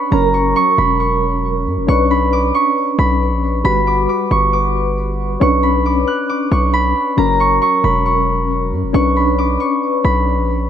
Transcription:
Already playing: C#4 D4 B4 B5 C#6
0.11 F#1 F#3 C#4 A#4 A#5
0.34 C#6
0.56 C#6
0.78 E1 B5
1.00 C#6
1.66 F#2
1.77 E1
1.87 B1 C#4 D4 B4 C#6
2.11 B5
2.33 D6
2.55 C#6
2.99 B1 B5
3.32 A#1
3.64 G1 G3 F#4 B4 B5
3.87 D6
4.09 D6
4.31 G1 C#6
4.53 D6
5.40 B1 C#4 D4 B4 C#6
5.63 B5
5.86 D6
6.07 F#6
6.29 D6
6.52 B1 C#6
6.73 B5
7.17 F#1 F#3 C#4 A#4 A#5
7.40 C#6
7.62 C#6
7.84 E1 B5
8.06 C#6
8.72 F#2
8.83 E1
8.93 B1 C#4 D4 B4 C#6
9.16 B5
9.39 D6
9.60 C#6
10.04 B1 B5
10.38 A#1

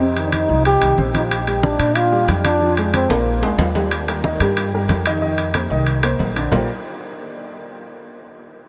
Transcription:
Already playing: F2
0.00 C3 C4, high conga
0.16 D#3 D#4, high conga, high timbale
0.27 D4
0.32 D#4, high conga, high timbale
0.49 C2 F3 F4, high conga
0.65 G4, high conga, high timbale
0.81 C2 D#3 D#4, high conga, high timbale
0.98 A#1 C4 C5, high conga
1.14 F3 D#4 F4, high conga, high timbale
1.31 high conga, high timbale
1.47 G3 G4, high conga, high timbale
1.63 D4, high conga
1.79 A#2 D4 D5, high conga, high timbale
1.95 F4, high conga, high timbale
2.12 G3 G4, high conga
2.28 F2, high conga, high timbale, low timbale
2.44 D4 F4 F5, high conga, high timbale
2.61 F3 F4, high conga
2.77 G#3 G#4, high conga, high timbale
2.94 C4, high conga, high timbale
3.09 A#1 A#3 A#4, high conga, high timbale
3.26 high conga
3.42 D2 G#3 G#4, high conga, high timbale
3.58 D#2 F4 F5, high conga, low timbale
3.75 G3 G4, high conga, low timbale
3.91 high conga, high timbale
4.08 G3 G4 A#4, high conga, high timbale
4.24 D#3 D#4 D#5, high conga
4.40 G2 G3 G4 A#4, high conga, high timbale
4.56 high conga, high timbale
4.72 G3 G4 A#4, high conga
4.88 F2, high conga, high timbale, low timbale
5.06 D#3 D#4 D#5, high timbale
5.21 D#3 D#4 D#5, high conga
5.38 high conga, high timbale
5.54 A#3 A#4 C5, high conga, high timbale
5.70 C2 D#3 D#4 D#5, high conga
5.86 high conga, high timbale
6.03 A#3 A#4 C5, high conga, high timbale
6.19 A#1, high conga, low timbale
6.36 D3 D4 D5, high timbale
6.51 A#1 A#3 F4 G4 A#4 C5 D5, low conga, low timbale

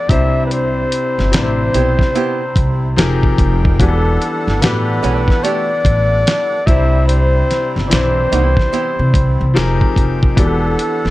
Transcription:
Already playing: E3 B3 D4 F#4 G4 B4 D5
0.09 C2 C3 C4 D4 E4 C5 E5, kick, closed hi-hat
0.46 B4
0.51 C5, closed hi-hat
0.92 closed hi-hat
1.19 G1, snare
1.32 A1 C3 C4 D4 E4 C5, muted hollow-body jazz guitar stroke, snare, closed hi-hat
1.74 B1 B3 E4 G4, closed hi-hat
1.99 kick, snare
2.15 B3 E4 G4, closed hi-hat
2.56 C2, kick, closed hi-hat
2.96 F1 F3 G#3 C4 D#4 G4 G#4 A#4 G5, snare, closed hi-hat
3.23 kick
3.38 F1, kick, closed hi-hat
3.65 kick
3.79 E1 E3 G3 B3 D4 F#4 G4 G#4 A4 F#5, kick, closed hi-hat
3.88 A4
4.22 closed hi-hat
4.47 G1, snare
4.61 A1 E3 B3 D4 F#4 G4 A4 B4, muted hollow-body jazz guitar stroke, snare, closed hi-hat
5.03 B1 G#3 C#4 F#4, closed hi-hat
5.14 A3 D4 G4
5.28 kick, snare
5.44 A3 D4 G4 D5, closed hi-hat
5.85 A1, kick, closed hi-hat
6.27 snare, closed hi-hat
6.66 C2 C3 G3 C4 D4 E4 C5 E5, kick, closed hi-hat
7.08 C5, closed hi-hat
7.51 snare, closed hi-hat
7.76 G1, snare
7.87 E3 C5 D5
7.91 B1 C4 D4 E4 C5, muted hollow-body jazz guitar stroke, snare, closed hi-hat
8.32 C2 A#3 D#4 F#4, closed hi-hat
8.43 B3 E4 G4
8.57 kick, snare
8.73 B3 E4 G4, closed hi-hat
8.99 C3
9.14 C2, kick, closed hi-hat
9.41 C2
9.54 F1 F3 G#3 C4 D#4 G4 G#4 A#4, snare, closed hi-hat
9.81 kick
9.96 F1, kick, closed hi-hat
10.23 kick
10.36 E1 E3 B3 D4 F#4 G4 A4 F#5, kick, closed hi-hat
10.79 closed hi-hat
11.05 G1, snare

